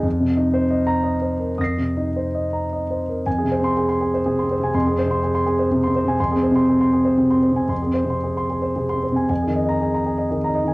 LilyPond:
<<
  \new Staff \with { instrumentName = "Grand piano" } { \time 3/4 \key f \minor \tempo 4 = 118 << { r4 \tuplet 3/2 { r4 bes''8~ } bes''16 r8. | <ees''' bes''' c''''>2. | r8. c'''8 r4. r16 | r2. |
r2. | r2. | r8. bes''8 r4. r16 | } \\ { r2. | r2. | aes''16 aes'16 c''8 aes'16 c'''16 aes'16 c''16 aes'16 c'''16 c''16 aes''16 | c'''16 aes'16 c''16 c'''16 aes'16 c'''16 aes'16 c''16 aes'16 c'''16 c''16 aes''16 |
c'''16 aes'16 c''16 c'''16 aes'16 c'''16 aes'16 c''16 aes'16 c'''16 c''16 aes''16 | c'''16 aes'16 c''16 c'''16 aes'16 c'''16 aes'16 c''16 aes'16 c'''16 c''16 aes''16 | aes''16 aes'16 ees''8 aes'16 bes''16 aes'16 ees''16 aes'16 bes''16 ees''16 aes''16 | } >> }
  \new Staff \with { instrumentName = "Grand piano" } { \clef bass \time 3/4 \key f \minor \tuplet 3/2 { f,8 c8 ees'8 c''8 ees''4 ees''8 c''8 bes'8 } | \tuplet 3/2 { f,8 c8 ees'8 c''8 ees''8 bes''8 ees''8 c''8 bes'8 } | \tuplet 3/2 { f,8 c8 c'8 } r4 \tuplet 3/2 { c8 c'8 c8 } | \tuplet 3/2 { f,8 c'8 c8 } r4 \tuplet 3/2 { c8 c'8 c8 } |
\tuplet 3/2 { f,8 c'8 c8 } r4 \tuplet 3/2 { c8 c'8 c8 } | \tuplet 3/2 { f,8 c'8 c8 } r4 \tuplet 3/2 { c8 c'8 c8 } | \tuplet 3/2 { f,8 ees8 ees'8 } r4 \tuplet 3/2 { ees8 ees'8 ees8 } | }
>>